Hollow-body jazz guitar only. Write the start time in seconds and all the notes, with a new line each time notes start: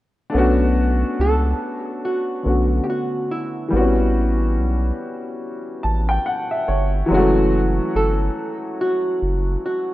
1.21 A4
2.05 F#4
2.84 G4
2.90 F#4
3.31 E4
7.96 A4
8.81 F#4
9.66 F#4